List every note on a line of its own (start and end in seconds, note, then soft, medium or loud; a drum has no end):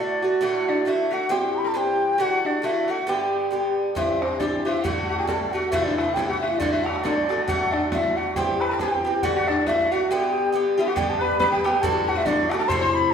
0.00 0.22 A2 medium
0.00 0.23 D3 soft
0.00 0.23 A3 medium
0.00 0.21 F#4 medium
0.00 0.42 D5 medium
0.22 0.40 D3 soft
0.22 0.41 A3 soft
0.22 0.41 F#4 soft
0.41 0.84 A2 medium
0.41 0.85 D3 medium
0.41 0.86 A3 medium
0.41 0.68 F#4 medium
0.41 0.87 F#4 medium
0.41 0.70 F#5 medium
0.69 0.87 D4 medium
0.69 0.89 D5 medium
0.85 1.11 A2 medium
0.85 1.12 D3 medium
0.85 1.11 A3 medium
0.85 1.10 E4 medium
0.85 1.10 F#4 medium
0.85 1.15 E5 medium
1.11 1.29 D3 soft
1.11 1.31 A3 soft
1.11 1.30 F#4 soft
1.11 1.30 F#4 medium
1.11 1.33 F#5 loud
1.29 1.73 G2 medium
1.29 1.74 E3 medium
1.29 1.74 C4 medium
1.29 1.64 G4 medium
1.29 1.75 G4 medium
1.29 1.53 G5 medium
1.54 1.59 A5 medium
1.58 1.69 B5 medium
1.64 1.74 A4 medium
1.64 1.79 A5 medium
1.74 2.18 G2 medium
1.74 2.19 E3 medium
1.74 2.19 C4 medium
1.74 2.16 G4 medium
1.74 2.20 G4 medium
1.74 2.23 G5 loud
2.18 2.61 A2 medium
2.18 2.62 D3 medium
2.18 2.63 A3 medium
2.18 2.45 F#4 medium
2.18 2.63 F#4 medium
2.18 2.48 F#5 loud
2.45 2.63 D4 medium
2.45 2.66 D5 medium
2.62 2.88 A2 medium
2.62 2.89 D3 medium
2.62 2.88 A3 medium
2.62 2.90 E4 medium
2.62 2.87 F#4 medium
2.62 2.92 E5 loud
2.88 3.07 D3 soft
2.88 3.08 A3 soft
2.88 3.07 F#4 soft
2.88 3.06 F#4 medium
2.88 3.10 F#5 medium
3.07 3.49 G2 medium
3.07 3.51 D3 medium
3.07 3.52 B3 medium
3.07 3.74 G4 medium
3.07 3.52 G4 medium
3.07 3.74 G5 medium
3.51 3.94 G2 soft
3.51 3.96 D3 medium
3.51 3.96 B3 medium
3.51 3.96 G4 medium
3.95 4.38 G2 medium
3.95 4.39 E3 medium
3.95 4.41 C4 medium
3.95 4.22 E4 medium
3.95 4.41 G4 medium
3.95 4.23 E5 medium
3.95 bodhran medium
4.21 4.39 C4 medium
4.21 4.41 C5 medium
4.21 bodhran medium
4.39 4.65 G2 soft
4.39 4.66 E3 medium
4.39 4.65 C4 medium
4.39 4.66 D4 medium
4.39 4.64 G4 medium
4.39 4.64 D5 medium
4.39 bodhran medium
4.53 bodhran soft
4.65 4.84 E3 soft
4.65 4.85 C4 soft
4.65 4.85 E4 medium
4.65 4.84 G4 soft
4.65 4.84 E5 medium
4.83 5.26 A2 medium
4.83 5.27 D3 medium
4.83 5.29 A3 medium
4.83 5.08 F#4 medium
4.83 5.29 F#4 medium
4.83 5.08 F#5 medium
4.83 bodhran medium
5.08 5.18 F#4 medium
5.08 5.18 F#5 medium
5.18 5.27 G4 medium
5.18 5.27 G5 medium
5.26 5.53 A2 medium
5.26 5.54 D3 soft
5.26 5.53 A3 medium
5.26 5.52 A4 medium
5.26 5.53 A5 medium
5.26 bodhran medium
5.30 5.52 F#4 medium
5.41 bodhran soft
5.51 5.72 D3 soft
5.51 5.72 A3 soft
5.51 5.72 F#4 soft
5.51 5.73 F#4 medium
5.51 5.70 F#5 medium
5.71 6.15 C3 medium
5.71 6.16 E3 medium
5.71 6.17 A3 medium
5.71 5.85 E4 medium
5.71 6.17 E4 medium
5.71 5.85 E5 medium
5.71 bodhran medium
5.83 5.98 D4 medium
5.83 5.97 D5 medium
5.96 6.15 E4 medium
5.96 6.15 E5 medium
5.96 bodhran medium
6.14 6.59 C3 medium
6.14 6.60 E3 medium
6.14 6.60 A3 medium
6.14 6.28 G4 medium
6.14 6.27 G5 loud
6.14 bodhran medium
6.19 6.61 E4 medium
6.28 6.42 F#4 medium
6.28 6.40 F#5 medium
6.28 bodhran soft
6.40 6.60 E4 medium
6.40 6.60 E5 medium
6.59 7.02 A2 medium
6.59 7.03 D3 medium
6.59 7.04 A3 medium
6.59 6.73 D4 medium
6.59 7.05 F#4 medium
6.59 6.73 D5 medium
6.59 bodhran medium
6.72 6.86 E4 medium
6.72 6.85 E5 medium
6.84 7.03 F#4 medium
6.84 7.04 F#5 medium
6.84 bodhran medium
6.96 bodhran medium
7.03 7.29 A2 medium
7.03 7.30 D3 medium
7.03 7.30 A3 medium
7.03 7.45 D4 medium
7.03 7.28 F#4 medium
7.03 7.46 D5 medium
7.03 bodhran medium
7.18 bodhran soft
7.29 7.48 D3 soft
7.29 7.48 A3 soft
7.29 7.48 F#4 soft
7.29 bodhran medium
7.46 7.91 A2 medium
7.46 7.92 D3 medium
7.46 7.92 A3 medium
7.46 7.71 F#4 medium
7.46 7.93 F#4 medium
7.46 7.74 F#5 loud
7.46 bodhran medium
7.72 7.91 D4 medium
7.72 7.90 D5 medium
7.72 bodhran medium
7.91 8.36 A2 soft
7.91 8.36 D3 medium
7.91 8.36 A3 medium
7.91 8.18 E4 medium
7.91 8.37 F#4 medium
7.91 8.18 E5 loud
7.91 bodhran medium
8.05 bodhran soft
8.17 8.36 F#4 medium
8.17 8.34 F#5 medium
8.35 8.79 G2 medium
8.35 8.79 E3 medium
8.35 8.80 C4 medium
8.35 8.59 G4 medium
8.35 8.80 G4 medium
8.35 8.62 G5 loud
8.35 bodhran medium
8.60 8.71 B4 medium
8.60 8.71 B5 medium
8.60 bodhran medium
8.69 8.80 A4 medium
8.69 8.79 A5 loud
8.79 9.05 G2 medium
8.79 9.05 E3 medium
8.79 9.05 C4 medium
8.79 9.24 G4 medium
8.79 9.03 G4 medium
8.79 9.24 G5 medium
8.79 bodhran medium
8.92 bodhran soft
9.05 9.23 E3 soft
9.05 9.24 C4 soft
9.05 9.23 G4 medium
9.23 9.65 A2 medium
9.23 9.67 D3 medium
9.23 9.67 A3 medium
9.23 9.35 F#4 medium
9.23 9.67 F#4 medium
9.23 9.29 F#5 medium
9.23 bodhran medium
9.31 9.34 F#5 medium
9.31 9.49 F#5 loud
9.36 9.49 F#4 medium
9.48 9.66 D4 medium
9.48 9.69 D5 medium
9.48 bodhran medium
9.66 9.92 A2 soft
9.66 9.92 D3 medium
9.66 9.92 A3 medium
9.66 9.92 E4 medium
9.66 9.91 F#4 medium
9.66 9.93 E5 loud
9.66 bodhran medium
9.79 bodhran soft
9.92 10.10 D3 soft
9.92 10.11 A3 soft
9.92 10.10 F#4 soft
9.92 10.10 F#4 medium
9.92 10.09 F#5 medium
10.09 10.51 G2 medium
10.09 10.53 D3 medium
10.09 10.53 B3 medium
10.09 10.75 G4 medium
10.09 10.54 G4 medium
10.09 10.49 G5 medium
10.53 10.78 G2 medium
10.53 10.78 D3 medium
10.53 10.78 B3 medium
10.53 10.76 G4 medium
10.78 10.96 D3 medium
10.78 10.96 B3 medium
10.78 10.86 E4 medium
10.78 10.96 G4 medium
10.78 10.90 E5 medium
10.87 10.95 F#4 medium
10.87 10.98 F#5 medium
10.95 11.38 G2 medium
10.95 11.39 D3 medium
10.95 11.40 B3 medium
10.95 11.22 G4 medium
10.95 11.41 G4 medium
10.95 11.11 G5 loud
10.95 bodhran medium
11.09 11.23 A5 medium
11.21 11.38 B4 medium
11.21 11.38 B5 loud
11.39 11.65 G2 medium
11.39 11.65 D3 medium
11.39 11.65 B3 medium
11.39 11.63 G4 medium
11.39 11.51 B4 medium
11.39 11.50 B5 loud
11.39 bodhran medium
11.51 11.82 G4 medium
11.51 11.63 G5 medium
11.64 11.82 D3 soft
11.64 11.84 B3 soft
11.64 11.83 G4 medium
11.64 11.83 G5 loud
11.64 bodhran medium
11.82 12.25 A2 medium
11.82 12.26 D3 medium
11.82 12.28 A3 medium
11.82 12.27 F#4 medium
11.82 12.06 A4 medium
11.82 12.10 A5 loud
11.82 bodhran medium
12.07 12.16 F#4 medium
12.07 12.19 F#5 medium
12.16 12.25 E4 medium
12.16 12.27 E5 medium
12.25 12.51 A2 medium
12.25 12.52 D3 medium
12.25 12.52 A3 medium
12.25 12.52 D4 medium
12.25 12.50 F#4 medium
12.25 12.51 D5 loud
12.25 bodhran medium
12.49 12.70 A3 soft
12.49 12.59 F#4 medium
12.49 12.70 F#4 medium
12.49 12.58 F#5 loud
12.49 bodhran medium
12.54 12.70 D3 soft
12.59 12.69 A4 medium
12.59 12.70 A5 loud
12.68 13.12 C3 medium
12.68 13.13 E3 medium
12.68 13.14 A3 medium
12.68 13.14 E4 medium
12.68 12.80 C5 loud
12.68 12.82 C6 loud
12.68 bodhran medium
12.81 13.13 C5 medium
12.81 12.92 C6 loud
12.92 13.12 B5 loud
13.11 13.14 A5 loud